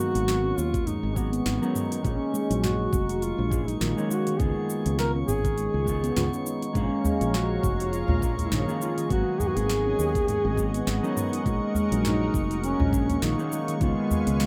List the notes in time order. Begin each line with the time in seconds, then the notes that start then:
Already playing: F#3 B3 D#4 F#4 A#4 C#6
0.15 G#1, open hi-hat, shaker
0.28 snare, open hi-hat, shaker
0.45 C#4
0.58 D#2 F4, shaker
0.74 D#3, kick, open hi-hat, shaker
0.87 G#3 D#4, mid tom, open hi-hat, shaker
1.03 G#1 G#3
1.15 F#3 G#3 A#3 B3 F#4, kick, shaker
1.33 B3, open hi-hat, shaker
1.46 G#1, snare, open hi-hat, shaker
1.61 F#3 B3 C#4 D#4 A#4, shaker
1.75 D#4, mid tom, shaker
1.91 D#4, open hi-hat, shaker
2.02 A#1 G#3 A#3 C#4, kick, open hi-hat, shaker
2.06 D#4
2.34 G#3, shaker
2.50 A#1 F#3, open hi-hat, shaker
2.63 F#4, snare, mid tom, open hi-hat, shaker
2.93 F1 D#4, kick, shaker
3.09 open hi-hat, shaker
3.22 F4, open hi-hat, shaker
3.38 A#1 G#3
3.50 G#3 A#3 C#4 G#4, kick, mid tom, shaker
3.68 A#3 D#4, open hi-hat, shaker
3.81 A#1 D#3, snare, open hi-hat, shaker
3.96 G#3 A#3 C#4 D#4, shaker
4.10 G#3 F#4, shaker
4.27 D#3, open hi-hat, shaker
4.38 C#2 G#3 B3 D#4 G#4, kick, mid tom, open hi-hat, shaker
4.42 F4
4.70 shaker
4.86 C#2, open hi-hat, shaker
4.99 A#4, snare, open hi-hat, shaker
5.16 C#4
5.28 G#1 G#4, mid tom, shaker
5.45 D#3, kick, open hi-hat, shaker
5.58 G#3, open hi-hat, shaker
5.74 C#2 G#3
5.85 G#3 B3 D#4, kick, shaker
5.89 F4
6.03 B3, open hi-hat, shaker
6.16 C#2, snare, mid tom, open hi-hat, shaker
6.33 C#4, shaker
6.46 D#4, shaker
6.62 D#4, open hi-hat, shaker
6.73 A#1 G#3 A#3 C#4 G#4 C#5 F5 A#5, kick, mid tom, open hi-hat, shaker
7.04 G#3, udu, shaker
7.21 A#1 F3, open hi-hat, shaker
7.34 F#4, snare, open hi-hat, shaker
7.63 F1 D#4, kick, mid tom, shaker
7.80 open hi-hat, shaker
7.93 F4, open hi-hat, shaker
8.08 A#1 G#3, udu
8.21 G#3 A#3 C#4 A#4, kick, shaker
8.38 A#3 D#4, open hi-hat, udu, shaker
8.52 A#1 D#3, snare, mid tom, open hi-hat, shaker
8.67 G#3 A#3 C#4 F4, shaker
8.81 G#3 F4, shaker
8.98 D#3, open hi-hat, shaker
9.08 G#1 F#3 B3 F#4 A#4 D#5 F#5 G#5, kick, open hi-hat, shaker
9.12 D#4
9.40 G#4, mid tom, udu, shaker
9.48 F#4
9.55 G#1 G#4, open hi-hat, shaker
9.70 snare, open hi-hat, shaker
9.86 C#4
9.99 D#2, shaker
10.15 D#3, kick, open hi-hat, shaker
10.28 G#3, mid tom, open hi-hat, shaker
10.45 G#1 G#3
10.56 F#3 G#3 A#3 B3 F#4, kick, shaker
10.74 B3, open hi-hat, shaker
10.87 G#1, snare, open hi-hat, shaker
11.03 F#3 B3 C#4 D#4 A#4, shaker
11.17 D#4, mid tom, shaker
11.33 D#4, open hi-hat, shaker
11.43 A#1 G#3 A#3 D#4 A#4 C#6, kick, open hi-hat, shaker
11.75 G#3, udu, shaker
11.92 A#1 F#3, open hi-hat, shaker
12.04 D#4, snare, mid tom, open hi-hat, shaker
12.34 F1 D#4, kick, shaker
12.51 open hi-hat, shaker
12.63 C#4, open hi-hat, shaker
12.80 A#1 G#3, udu
12.92 G#3 A#3 C#4 G#4, kick, mid tom, shaker
13.09 A#3, open hi-hat, udu, shaker
13.22 A#1 D#3 D#4, snare, open hi-hat, shaker
13.38 G#3 A#3 C#4 D#4, shaker
13.52 G#3, shaker
13.68 D#3, open hi-hat, shaker
13.79 C#2 G#3 B3 D#4 F4 B4 F5 G#5, kick, mid tom, open hi-hat, shaker
14.11 udu, shaker
14.27 C#2, open hi-hat, shaker
14.40 snare, open hi-hat, shaker